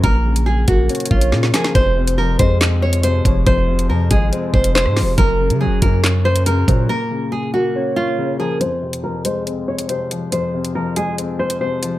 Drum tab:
HH |x-----x-----x---xxxx--x-----x---|x-----x-----x---x-----x-x---x---|x-----x-----x---x-----x-----o---|x-----x-----x---x-----x-x---x---|
CP |--------------------------------|----------------x---------------|------------------------x-------|----------------x---------------|
SD |------------------------o-o-o-o-|----------------o---------------|------------------------o-r-o---|----------------o---------------|
BD |o-----------o-------o-----------|o-----------o---------------o---|o-----------o-------o-----------|o-----------o---------------o---|

HH |--------------------------------|x-----x-----x---x-----x-x---x---|x-----x-----x---x-----x-----x---|
CP |--------------------------------|--------------------------------|--------------------------------|
SD |--------------------------------|--------------------------------|--------------------------------|
BD |--------------------------------|--------------------------------|--------------------------------|